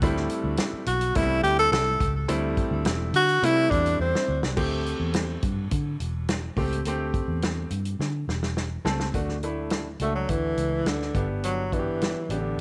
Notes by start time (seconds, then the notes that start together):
0.02 D2 G3 A3 C4 E4, kick, closed hi-hat
0.17 snare
0.29 closed hi-hat
0.44 D2
0.57 snare, closed hi-hat
0.73 muted fingered electric bass stroke
0.86 B1 F#4, closed hi-hat
1.01 closed hi-hat
1.15 C2 G3 A3 B3 E4, kick, closed hi-hat
1.22 C4
1.43 D2 G4, closed hi-hat
1.59 A4, closed hi-hat
1.72 C2 A4, snare, closed hi-hat
2.00 C#2, kick, closed hi-hat
2.28 D2 G3 A3 C4 E4, closed hi-hat
2.57 kick, closed hi-hat
2.71 D2
2.85 E1, snare, closed hi-hat
3.13 D3 F#4, closed hi-hat
3.29 closed hi-hat
3.42 C3 G3 A3 C4 E4, closed hi-hat
3.70 E2 D4, kick, closed hi-hat
3.86 closed hi-hat
3.99 E2 C4
4.15 snare
4.28 D2
4.42 C2, snare
4.57 D2 A3 C4 G4, kick, crash
4.86 closed hi-hat
5.00 E2
5.14 snare, closed hi-hat
5.42 G2, kick, closed hi-hat
5.71 D3, kick, closed hi-hat
6.00 E1, closed hi-hat
6.29 snare, closed hi-hat
6.56 C#2 A3 C4 G4, kick, open hi-hat
6.72 closed hi-hat
6.85 D2 A3 C4 G4, closed hi-hat
7.14 kick, closed hi-hat
7.28 E2
7.42 snare, closed hi-hat
7.70 G2, closed hi-hat
7.85 closed hi-hat
7.99 D3, snare
8.28 E1, snare
8.43 snare
8.57 snare
8.85 C#2 A3 C4 A4, snare
9.00 snare
9.14 D2 A3 D4 F#4, kick, closed hi-hat
9.29 snare
9.43 A3 D4 E4, closed hi-hat
9.70 snare, closed hi-hat
10.00 C#2 A3 D4 F#4, closed hi-hat
10.15 F#3
10.29 D2 E3, kick, closed hi-hat
10.57 C#2, closed hi-hat
10.85 D2 D3, snare, closed hi-hat
11.02 snare
11.15 G1 B3 D4 G4, kick, closed hi-hat
11.44 F#3, closed hi-hat
11.72 E3 B3 D4 F#4, kick, closed hi-hat
11.79 G4
12.01 snare, closed hi-hat
12.29 A1 D3 B3 D4 G4, closed hi-hat
12.58 G1